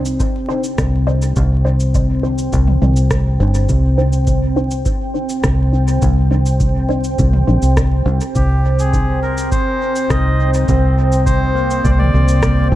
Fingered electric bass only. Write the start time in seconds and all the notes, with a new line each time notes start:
Already playing: C2
0.78 C2
1.36 C2
2.53 C2
2.82 C2
3.40 G1
3.69 C2
5.44 C2
6.02 C2
7.19 C2
7.48 A#1
7.62 C2
8.06 C2
8.35 C2
10.10 C2
10.68 C2
11.85 C2
12.14 C2
12.72 G1